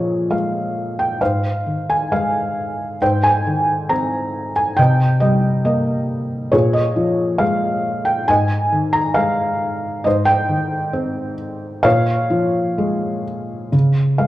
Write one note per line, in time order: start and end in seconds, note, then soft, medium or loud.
0.00 1.17 A#2 soft
0.00 1.17 F3 soft
0.00 1.17 G#4 soft
0.00 1.23 C#5 medium
0.00 0.32 D#5 medium
0.30 1.18 G#3 soft
0.30 0.94 F5 soft
0.99 1.22 G5 medium
1.21 2.97 G#2 soft
1.21 2.98 C5 soft
1.21 1.91 F5 medium
1.66 2.97 D#3 soft
1.90 2.12 G#5 medium
2.12 2.99 G#3 soft
2.12 3.04 F5 medium
3.02 4.75 G#2 soft
3.02 4.75 C5 soft
3.02 3.22 G5 medium
3.23 3.92 G#5 medium
3.47 4.75 D#3 soft
3.89 4.76 C4 soft
3.89 4.52 A#5 medium
4.56 4.77 G#5 medium
4.77 6.50 C3 medium
4.77 5.19 D#5 soft
4.77 5.18 G5 medium
5.20 6.49 G3 soft
5.20 5.62 D#5 medium
5.65 6.50 A#3 soft
5.65 6.49 D#5 medium
6.52 8.25 A#2 medium
6.52 8.25 G#4 soft
6.52 6.75 C#5 medium
6.73 7.42 D#5 medium
6.96 8.24 F3 soft
7.38 8.26 G#3 soft
7.38 8.02 F5 medium
8.05 8.29 G5 medium
8.27 10.01 G#2 medium
8.27 10.02 D#5 medium
8.27 8.97 G#5 medium
8.72 10.01 D#3 soft
8.93 9.17 A#5 medium
9.14 10.03 G#3 soft
9.14 10.07 F5 medium
10.04 11.81 G#2 medium
10.04 11.82 C5 soft
10.04 10.26 D#5 medium
10.25 11.35 G5 medium
10.49 11.81 D#3 soft
10.93 11.82 C4 soft
11.83 13.69 A#2 medium
11.83 13.69 C#5 medium
11.83 13.22 F5 medium
12.30 13.69 F3 soft
12.78 13.70 G#3 soft
13.72 14.27 C#3 soft
14.18 14.27 G#3 soft
14.18 14.27 F5 medium